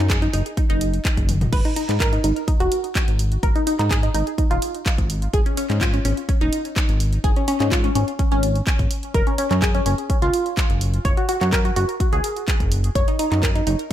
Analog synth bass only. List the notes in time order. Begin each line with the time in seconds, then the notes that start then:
0.00 F#2
0.34 F#1
0.70 F#1
1.17 F#1
1.53 G#1
1.89 G#2
2.24 G#1
2.60 D#1
3.08 G#1
3.43 G#1
3.79 G#2
4.14 G#1
4.51 D#1
4.98 G#1
5.34 G#1
5.70 G#2
6.05 G#1
6.41 D#1
6.89 G#1
7.24 G#1
7.60 G#2
7.95 G#1
8.32 G#1
8.79 G#1
9.14 F#1
9.51 F#2
9.86 F#1
10.22 C#2
10.70 F#1
11.05 F#1
11.41 F#2
11.76 F#1
12.13 C#2
12.60 F#1
12.95 F#1
13.32 F#2
13.67 F#1